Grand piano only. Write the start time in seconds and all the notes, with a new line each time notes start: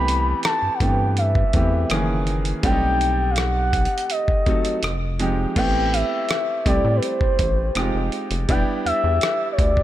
Already playing: E3 A3 B3 C4 G4
0.80 E3 A3 B3 C4 G4
1.53 E3 A3 B3 C4 G4
1.90 D#3 E3 A#3 C#4 G#4
2.63 G3 A3 C4 D4 G4
2.71 D#4
4.46 F#3 A3 C4 D#4 A4
5.19 F3 G#3 C4 D#4 G4
5.56 A3 B3 C4 E4 G4
6.66 G3 A3 C4 E4 G4
7.75 G#3 C4 D#4 F4 G4
8.48 G3 B3 D4 E4 G4